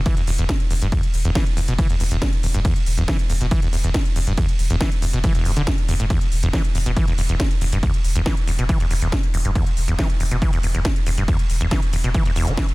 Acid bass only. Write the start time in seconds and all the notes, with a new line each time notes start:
0.06 E3
0.17 E2
0.27 E2
0.39 E2
0.49 G2
0.70 E2
0.82 G2
0.92 E2
1.25 E2
1.35 E3
1.57 E2
1.68 B2
1.78 E3
1.90 E2
2.00 E2
2.11 E2
2.22 G2
2.43 E2
2.54 G2
2.65 E2
2.98 E2
3.08 E3
3.30 E2
3.41 B2
3.51 E3
3.62 E2
3.73 E2
3.84 E2
3.94 G2
4.16 E2
4.27 G2
4.37 E2
4.70 E2
4.81 E3
5.02 E2
5.13 B2
5.24 E3
5.35 E2
5.45 G2
5.57 D3
5.67 E2
5.89 E2
6.00 A2
6.10 E2
6.43 E2
6.53 E3
6.75 E2
6.86 B2
6.96 E3
7.08 E2
7.18 E2
7.29 E2
7.40 G2
7.61 E2
7.72 G2
7.83 E2
8.16 E2
8.26 E3
8.47 E2
8.59 B2
8.69 E3
8.80 E2
8.91 E2
9.02 E2
9.12 G2
9.34 E2
9.45 G2
9.55 E2
9.88 E2
9.99 E3
10.20 E2
10.31 B2
10.42 E3
10.53 E2
10.63 E2
10.75 E2
10.85 G2
11.07 E2
11.18 G2
11.28 E2
11.61 E2
11.71 E3
11.93 E2
12.04 B2
12.14 E3
12.26 E2
12.36 E2
12.47 E3
12.58 E3